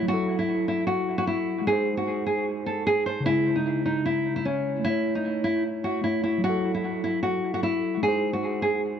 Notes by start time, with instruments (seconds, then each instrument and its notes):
Already playing: tine electric piano A3
0.03 tine electric piano F#3
0.08 tine electric piano E4, nylon-string guitar F#4
0.14 tine electric piano A4
0.39 nylon-string guitar E4
0.68 nylon-string guitar E4
0.87 nylon-string guitar F#4
1.18 nylon-string guitar F#4
1.27 nylon-string guitar E4
1.62 tine electric piano G#3
1.67 tine electric piano D#4, nylon-string guitar G#4
1.73 tine electric piano C5
1.97 nylon-string guitar F#4
2.26 nylon-string guitar G#4
2.66 nylon-string guitar A4
2.87 nylon-string guitar G#4
3.06 nylon-string guitar C5
3.21 tine electric piano C#3
3.26 tine electric piano G#3, nylon-string guitar E4
3.31 tine electric piano E4
3.56 nylon-string guitar D#4
3.86 nylon-string guitar D#4
4.06 nylon-string guitar E4
4.36 nylon-string guitar E4
4.45 nylon-string guitar C#4
4.79 tine electric piano A3
4.84 nylon-string guitar E4, tine electric piano E4
4.90 tine electric piano C#5
5.15 nylon-string guitar D#4
5.44 nylon-string guitar E4
5.84 nylon-string guitar F#4
6.01 tine electric piano A3 E4, nylon-string guitar E4
6.07 tine electric piano C#5
6.24 nylon-string guitar E4
6.38 tine electric piano F#3
6.44 tine electric piano E4, nylon-string guitar F#4
6.49 tine electric piano A4
6.75 nylon-string guitar E4
7.04 nylon-string guitar E4
7.23 nylon-string guitar F#4
7.54 nylon-string guitar F#4
7.63 nylon-string guitar E4
7.97 tine electric piano G#3
8.03 tine electric piano D#4, nylon-string guitar G#4
8.08 tine electric piano C5
8.33 nylon-string guitar F#4
8.62 nylon-string guitar G#4